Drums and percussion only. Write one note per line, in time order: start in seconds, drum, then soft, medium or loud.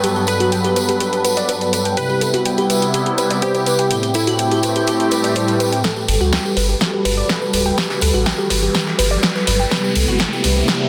0.04 closed hi-hat medium
0.04 tambourine soft
0.16 tambourine soft
0.27 closed hi-hat medium
0.27 tambourine medium
0.40 closed hi-hat soft
0.40 tambourine soft
0.52 closed hi-hat medium
0.52 tambourine soft
0.65 closed hi-hat soft
0.65 tambourine soft
0.76 closed hi-hat medium
0.76 tambourine medium
0.89 closed hi-hat soft
0.89 tambourine soft
1.00 closed hi-hat medium
1.00 tambourine medium
1.13 closed hi-hat soft
1.13 tambourine soft
1.25 closed hi-hat medium
1.25 tambourine medium
1.37 closed hi-hat soft
1.37 tambourine soft
1.49 closed hi-hat medium
1.49 tambourine soft
1.61 closed hi-hat soft
1.61 tambourine soft
1.73 closed hi-hat medium
1.73 tambourine medium
1.85 closed hi-hat soft
1.85 tambourine soft
1.97 closed hi-hat medium
1.97 tambourine soft
2.09 tambourine soft
2.21 closed hi-hat medium
2.21 tambourine medium
2.34 closed hi-hat soft
2.34 tambourine soft
2.45 closed hi-hat medium
2.45 tambourine soft
2.58 closed hi-hat soft
2.58 tambourine soft
2.70 closed hi-hat medium
2.70 tambourine medium
2.82 closed hi-hat medium
2.82 tambourine soft
2.94 closed hi-hat medium
2.94 tambourine soft
3.06 closed hi-hat soft
3.18 closed hi-hat medium
3.18 tambourine medium
3.30 closed hi-hat medium
3.30 tambourine soft
3.42 closed hi-hat medium
3.42 tambourine soft
3.54 closed hi-hat soft
3.54 tambourine soft
3.66 closed hi-hat medium
3.66 tambourine medium
3.78 closed hi-hat medium
3.78 tambourine soft
3.91 closed hi-hat medium
3.91 tambourine soft
4.03 closed hi-hat soft
4.03 tambourine soft
4.14 closed hi-hat medium
4.14 tambourine medium
4.27 closed hi-hat medium
4.27 tambourine soft
4.39 closed hi-hat medium
4.39 tambourine soft
4.51 closed hi-hat soft
4.51 tambourine soft
4.63 closed hi-hat medium
4.63 tambourine medium
4.76 closed hi-hat medium
4.76 tambourine soft
4.87 closed hi-hat medium
4.87 tambourine soft
5.00 closed hi-hat soft
5.00 tambourine soft
5.11 closed hi-hat medium
5.11 tambourine medium
5.23 closed hi-hat medium
5.23 tambourine soft
5.35 closed hi-hat medium
5.35 tambourine soft
5.48 closed hi-hat soft
5.48 tambourine soft
5.60 closed hi-hat medium
5.60 tambourine medium
5.72 closed hi-hat soft
5.72 tambourine soft
5.84 kick loud
5.84 snare soft
5.84 tambourine medium
5.96 tambourine soft
6.08 open hi-hat loud
6.08 tambourine medium
6.21 tambourine soft
6.33 kick loud
6.33 snare loud
6.33 snare soft
6.33 tambourine medium
6.45 tambourine soft
6.57 open hi-hat loud
6.57 tambourine medium
6.70 tambourine soft
6.81 kick loud
6.81 snare soft
6.81 tambourine medium
6.81 tambourine soft
7.05 open hi-hat medium
7.05 open hi-hat loud
7.05 tambourine medium
7.18 tambourine soft
7.29 kick loud
7.29 snare loud
7.29 snare medium
7.29 tambourine medium
7.29 tambourine soft
7.42 tambourine soft
7.53 open hi-hat loud
7.53 tambourine loud
7.53 tambourine medium
7.66 tambourine soft
7.78 kick loud
7.78 snare medium
7.78 tambourine medium
7.90 snare soft
7.90 tambourine soft
8.01 open hi-hat loud
8.01 tambourine loud
8.01 tambourine medium
8.14 tambourine soft
8.26 kick loud
8.26 snare medium
8.26 snare loud
8.26 tambourine medium
8.38 tambourine soft
8.50 open hi-hat loud
8.50 tambourine medium
8.63 tambourine soft
8.75 kick loud
8.75 snare medium
8.75 tambourine medium
8.87 snare soft
8.99 open hi-hat loud
8.99 tambourine medium
8.99 tambourine loud
9.13 tambourine soft
9.23 kick loud
9.23 snare medium
9.23 snare loud
9.23 tambourine medium
9.35 snare soft
9.35 tambourine soft
9.47 open hi-hat loud
9.47 tambourine medium
9.59 tambourine soft
9.71 kick loud
9.71 snare medium
9.71 tambourine medium
9.84 tambourine soft
9.95 open hi-hat loud
9.95 tambourine loud
9.95 tambourine medium
10.08 tambourine soft
10.18 kick loud
10.18 snare loud
10.18 snare medium
10.18 tambourine medium
10.33 tambourine soft
10.44 open hi-hat loud
10.44 tambourine loud
10.44 tambourine medium
10.56 tambourine soft
10.68 kick loud
10.68 snare medium
10.68 tambourine medium